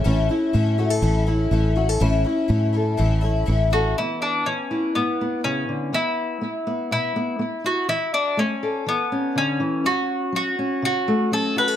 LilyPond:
<<
  \new Staff \with { instrumentName = "Mandolin" } { \time 4/4 \key a \major \tempo 4 = 122 r1 | r2. r8 fis'8 | e'8 d'8 cis'4 b4 cis'4 | e'2 e'4. fis'8 |
e'8 d'8 cis'4 b4 cis'4 | fis'4 fis'4 fis'4 a'8 b'8 | }
  \new Staff \with { instrumentName = "Twelve-string acoustic guitar" } { \time 4/4 \key a \major <a, e a cis' e'>8 <a cis' e'>8 <e a cis' e'>8 <a cis' e'>8 <a, e a cis' e'>8 <a cis' e'>8 <e a cis' e'>8 <a cis' e'>8 | <a, e a cis' e'>8 <a cis' e'>8 <e a cis' e'>8 <a cis' e'>8 <a, e a cis' e'>8 <a cis' e'>8 <e a cis' e'>8 <a cis' e'>8 | r1 | r1 |
r1 | r1 | }
  \new Staff \with { instrumentName = "Steel-string acoustic guitar" } { \time 4/4 \key a \major << { cis'8 e'4 fis'16 a'8. e'4 fis'16 a'16 | cis'8 e'4 a'4 e'4 a'8 | <e b>4. e'4 b4. | b4 r8 b4 b8 r8 e'8 |
r4. a'4 cis'4.~ | cis'4. cis'4 a8 cis'8 fis'16 a'16 | } \\ { a,4 e4 a,4 e4 | a,4 e4 a,4 e4 | cis4 e4 gis,4 cis8 d8 | e4 b8 r8 b,4 b4 |
e4 a4 e4 d8 e8 | fis,4 fis4 cis4 fis4 | } >> }
  \new Staff \with { instrumentName = "Fingered electric bass" } { \clef bass \time 4/4 \key a \major a,,8 r8 a,4 a,,4 a,,4 | a,,8 r8 a,4 a,,4 a,,4 | r1 | r1 |
r1 | r1 | }
>>